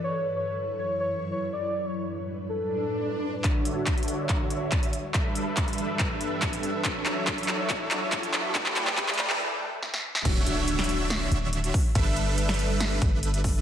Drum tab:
CC |--------------------------------|--------------------------------|--------------------------------|--------------------------------|
HH |--------------------------------|--------------------------------|x---x---x-xxx---x---x---x-x-x---|x---x---x-xxx---x---x---x-x-x---|
CP |--------------------------------|--------------------------------|x-------x-------x-------x-------|x-------x-------x-------x-------|
SD |--------------------------------|--------------------------------|--------------------------------|--------------------------------|
BD |--------------------------------|--------------------------------|o-------o-------o-------o-------|o-------o-------o-------o-------|

CC |--------------------------------|--------------------------------|x---------------x---------------|x---------------x---------------|
HH |x---x---x-xxx---x---x---x-x-x---|x---x---x-xxx-------------------|x---x---x-xxx---x---x---x-x-o---|x---x---x-xxx---x---x---x-x-o---|
CP |x---x---x---x---x---x---x---x---|x-x-x-x-x-x-x-x-----------------|--------------------------------|--------------------------------|
SD |--------------------------------|------------------------o-o---o-|----------o-----o---------------|----------o-----o---------------|
BD |o-------o-------o-------o-------|o-------o-----------------------|o---------------------------o---|o-------------------o-------o---|